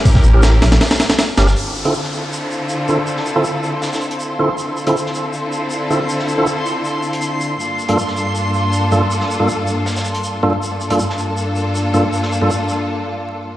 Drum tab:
RD |x-------x---x-x-x-x-x-x-x---x-x-|--------------------------------|--------------------------------|--------------------------------|
HH |--------------------------------|------x-------------------------|----------------------x---------|------x-------------------------|
SH |x---x---x---x---xxxxx-x-x---x-x-|x---x---x---x---x---x---x---x---|x---x---x---x---x-x-x---x-------|x---x---x---x---x---x---x---x---|
SD |--o-----o---o-o-ooooo-o-o---o-o-|----------o---------------------|--o-------------o-o-------------|----------o---------------------|
BD |o-o-----------------------------|--------------------------------|--------------------------------|--------------------------------|

RD |--------------------------------|--------------------------------|--------------------------------|--------------------------------|
HH |----------------------x---------|------x-------------------------|----------------------x---------|------x-------------------------|
SH |x---x---x---x---x---x---x---x---|x---x---x---x---x---x---x---x---|x---x---x---x---x-x-x---x-------|x---x---x---x---x---x---x---x---|
SD |--o-----------------------------|----------o---------------------|--o-------------o-o-------------|----------o---------------------|
BD |--------------------------------|--------------------------------|--------------------------------|--------------------------------|

RD |--------------------------------|
HH |--------------------------------|
SH |x---x---x---x-------------------|
SD |--o-----------------------------|
BD |--------------------------------|